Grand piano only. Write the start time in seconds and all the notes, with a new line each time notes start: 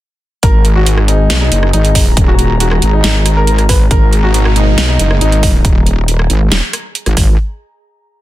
0.43 A#4
0.76 F#4
1.08 D#4
1.41 D#4
1.73 D#4
2.28 F#4
2.60 F#4
2.93 D#4
3.37 A#4
3.69 B4
3.91 A#4
4.24 F#4
4.56 D#4
4.89 D#4
5.21 D#4